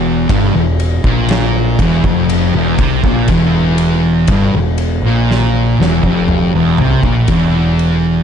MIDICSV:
0, 0, Header, 1, 4, 480
1, 0, Start_track
1, 0, Tempo, 1000000
1, 1580, Time_signature, 4, 2, 24, 8
1, 3951, End_track
2, 0, Start_track
2, 0, Title_t, "Distorted electric guitar"
2, 0, Program_c, 0, 30
2, 0, Note_on_c, 0, 40, 107
2, 133, Note_off_c, 0, 40, 0
2, 140, Note_on_c, 0, 43, 109
2, 254, Note_off_c, 0, 43, 0
2, 261, Note_on_c, 0, 40, 81
2, 453, Note_off_c, 0, 40, 0
2, 507, Note_on_c, 0, 46, 111
2, 856, Note_off_c, 0, 46, 0
2, 871, Note_on_c, 0, 40, 97
2, 978, Note_off_c, 0, 40, 0
2, 988, Note_on_c, 0, 41, 105
2, 1216, Note_off_c, 0, 41, 0
2, 1232, Note_on_c, 0, 40, 97
2, 1339, Note_off_c, 0, 40, 0
2, 1344, Note_on_c, 0, 48, 109
2, 1455, Note_off_c, 0, 48, 0
2, 1468, Note_on_c, 0, 46, 101
2, 1576, Note_off_c, 0, 46, 0
2, 1588, Note_on_c, 0, 40, 113
2, 2056, Note_off_c, 0, 40, 0
2, 2073, Note_on_c, 0, 43, 107
2, 2179, Note_off_c, 0, 43, 0
2, 2190, Note_on_c, 0, 40, 76
2, 2376, Note_off_c, 0, 40, 0
2, 2430, Note_on_c, 0, 46, 101
2, 2777, Note_off_c, 0, 46, 0
2, 2781, Note_on_c, 0, 40, 101
2, 2893, Note_off_c, 0, 40, 0
2, 2901, Note_on_c, 0, 41, 112
2, 3133, Note_off_c, 0, 41, 0
2, 3145, Note_on_c, 0, 40, 89
2, 3255, Note_off_c, 0, 40, 0
2, 3268, Note_on_c, 0, 48, 106
2, 3376, Note_off_c, 0, 48, 0
2, 3382, Note_on_c, 0, 46, 97
2, 3494, Note_off_c, 0, 46, 0
2, 3505, Note_on_c, 0, 40, 99
2, 3951, Note_off_c, 0, 40, 0
2, 3951, End_track
3, 0, Start_track
3, 0, Title_t, "Picked electric bass"
3, 0, Program_c, 1, 34
3, 0, Note_on_c, 1, 28, 100
3, 121, Note_off_c, 1, 28, 0
3, 139, Note_on_c, 1, 31, 102
3, 252, Note_off_c, 1, 31, 0
3, 258, Note_on_c, 1, 28, 80
3, 483, Note_off_c, 1, 28, 0
3, 497, Note_on_c, 1, 34, 92
3, 839, Note_off_c, 1, 34, 0
3, 859, Note_on_c, 1, 28, 100
3, 971, Note_off_c, 1, 28, 0
3, 975, Note_on_c, 1, 29, 106
3, 1200, Note_off_c, 1, 29, 0
3, 1215, Note_on_c, 1, 28, 97
3, 1329, Note_off_c, 1, 28, 0
3, 1336, Note_on_c, 1, 36, 94
3, 1449, Note_off_c, 1, 36, 0
3, 1455, Note_on_c, 1, 34, 95
3, 1569, Note_off_c, 1, 34, 0
3, 1575, Note_on_c, 1, 28, 97
3, 2038, Note_off_c, 1, 28, 0
3, 2053, Note_on_c, 1, 31, 103
3, 2167, Note_off_c, 1, 31, 0
3, 2173, Note_on_c, 1, 28, 74
3, 2399, Note_off_c, 1, 28, 0
3, 2407, Note_on_c, 1, 34, 93
3, 2754, Note_off_c, 1, 34, 0
3, 2775, Note_on_c, 1, 28, 91
3, 2888, Note_off_c, 1, 28, 0
3, 2894, Note_on_c, 1, 29, 101
3, 3120, Note_off_c, 1, 29, 0
3, 3137, Note_on_c, 1, 28, 90
3, 3249, Note_off_c, 1, 28, 0
3, 3256, Note_on_c, 1, 36, 92
3, 3369, Note_off_c, 1, 36, 0
3, 3372, Note_on_c, 1, 34, 103
3, 3487, Note_off_c, 1, 34, 0
3, 3493, Note_on_c, 1, 28, 87
3, 3951, Note_off_c, 1, 28, 0
3, 3951, End_track
4, 0, Start_track
4, 0, Title_t, "Drums"
4, 141, Note_on_c, 9, 36, 125
4, 142, Note_on_c, 9, 51, 113
4, 189, Note_off_c, 9, 36, 0
4, 190, Note_off_c, 9, 51, 0
4, 382, Note_on_c, 9, 51, 77
4, 430, Note_off_c, 9, 51, 0
4, 500, Note_on_c, 9, 36, 118
4, 548, Note_off_c, 9, 36, 0
4, 617, Note_on_c, 9, 51, 105
4, 628, Note_on_c, 9, 38, 103
4, 665, Note_off_c, 9, 51, 0
4, 676, Note_off_c, 9, 38, 0
4, 859, Note_on_c, 9, 36, 106
4, 860, Note_on_c, 9, 51, 85
4, 907, Note_off_c, 9, 36, 0
4, 908, Note_off_c, 9, 51, 0
4, 979, Note_on_c, 9, 36, 116
4, 1027, Note_off_c, 9, 36, 0
4, 1101, Note_on_c, 9, 51, 112
4, 1149, Note_off_c, 9, 51, 0
4, 1336, Note_on_c, 9, 51, 74
4, 1338, Note_on_c, 9, 36, 107
4, 1384, Note_off_c, 9, 51, 0
4, 1386, Note_off_c, 9, 36, 0
4, 1458, Note_on_c, 9, 36, 99
4, 1506, Note_off_c, 9, 36, 0
4, 1573, Note_on_c, 9, 51, 104
4, 1577, Note_on_c, 9, 36, 101
4, 1621, Note_off_c, 9, 51, 0
4, 1625, Note_off_c, 9, 36, 0
4, 1814, Note_on_c, 9, 51, 78
4, 1862, Note_off_c, 9, 51, 0
4, 2052, Note_on_c, 9, 51, 113
4, 2056, Note_on_c, 9, 36, 120
4, 2100, Note_off_c, 9, 51, 0
4, 2104, Note_off_c, 9, 36, 0
4, 2293, Note_on_c, 9, 51, 77
4, 2341, Note_off_c, 9, 51, 0
4, 2549, Note_on_c, 9, 38, 67
4, 2597, Note_off_c, 9, 38, 0
4, 2791, Note_on_c, 9, 38, 80
4, 2839, Note_off_c, 9, 38, 0
4, 2897, Note_on_c, 9, 36, 80
4, 2945, Note_off_c, 9, 36, 0
4, 3016, Note_on_c, 9, 45, 90
4, 3064, Note_off_c, 9, 45, 0
4, 3256, Note_on_c, 9, 43, 99
4, 3304, Note_off_c, 9, 43, 0
4, 3376, Note_on_c, 9, 36, 95
4, 3424, Note_off_c, 9, 36, 0
4, 3493, Note_on_c, 9, 51, 88
4, 3496, Note_on_c, 9, 36, 109
4, 3541, Note_off_c, 9, 51, 0
4, 3544, Note_off_c, 9, 36, 0
4, 3740, Note_on_c, 9, 51, 62
4, 3788, Note_off_c, 9, 51, 0
4, 3951, End_track
0, 0, End_of_file